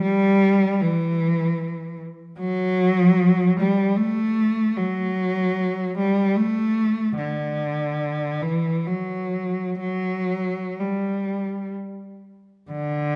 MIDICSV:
0, 0, Header, 1, 2, 480
1, 0, Start_track
1, 0, Tempo, 788436
1, 15, Time_signature, 3, 2, 24, 8
1, 3375, Tempo, 819672
1, 4815, Tempo, 849858
1, 5295, Tempo, 960000
1, 7447, End_track
2, 0, Start_track
2, 0, Title_t, "Cello"
2, 0, Program_c, 0, 42
2, 6, Note_on_c, 0, 55, 76
2, 480, Note_off_c, 0, 55, 0
2, 497, Note_on_c, 0, 52, 66
2, 1220, Note_off_c, 0, 52, 0
2, 1455, Note_on_c, 0, 54, 83
2, 2148, Note_off_c, 0, 54, 0
2, 2186, Note_on_c, 0, 55, 65
2, 2413, Note_on_c, 0, 57, 72
2, 2421, Note_off_c, 0, 55, 0
2, 2891, Note_off_c, 0, 57, 0
2, 2905, Note_on_c, 0, 54, 71
2, 3618, Note_off_c, 0, 54, 0
2, 3627, Note_on_c, 0, 55, 66
2, 3849, Note_off_c, 0, 55, 0
2, 3854, Note_on_c, 0, 57, 71
2, 4328, Note_on_c, 0, 50, 63
2, 4330, Note_off_c, 0, 57, 0
2, 5041, Note_off_c, 0, 50, 0
2, 5050, Note_on_c, 0, 52, 58
2, 5295, Note_off_c, 0, 52, 0
2, 5303, Note_on_c, 0, 54, 56
2, 5761, Note_off_c, 0, 54, 0
2, 5767, Note_on_c, 0, 54, 63
2, 6257, Note_off_c, 0, 54, 0
2, 6269, Note_on_c, 0, 55, 46
2, 6734, Note_off_c, 0, 55, 0
2, 7223, Note_on_c, 0, 50, 63
2, 7447, Note_off_c, 0, 50, 0
2, 7447, End_track
0, 0, End_of_file